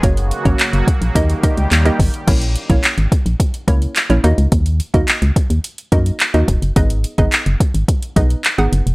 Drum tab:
CC |----------------|x---------------|----------------|----------------|
HH |xxxxxxxxxxxxxxox|xxxxxxxxxxxxxxxx|xxxxxxxxxxxxxxxx|xxxxxxxxxxxxxxxx|
CP |----x-------x---|----x-------x---|----x-------x---|----x-------x---|
BD |o--o--o-o-o---o-|o--o--o-o-o-----|o--o--o---o---o-|o--o--o-o-o-----|